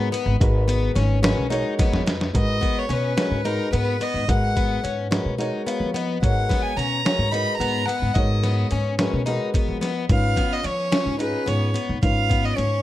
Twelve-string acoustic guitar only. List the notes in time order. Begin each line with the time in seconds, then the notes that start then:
0.12 B3
0.68 B3
0.95 C#4
1.23 C#4
1.50 D#4
1.79 B3
2.07 B3
2.61 B3
2.89 C#4
3.17 C#4
3.45 D#4
3.73 B3
4.01 B3
4.56 B3
4.84 C#4
5.11 C#4
5.38 D#4
5.67 B3
5.94 B3
6.49 B3
6.77 C#4
7.05 C#4
7.32 D#4
7.60 B3
7.88 B3
8.43 B3
8.72 C#4
8.99 C#4
9.26 D#4
9.54 B3
9.81 B3
10.36 B3
10.63 C#4
10.92 C#4
11.19 D#4
11.46 B3
11.74 B3
12.29 B3
12.57 C#4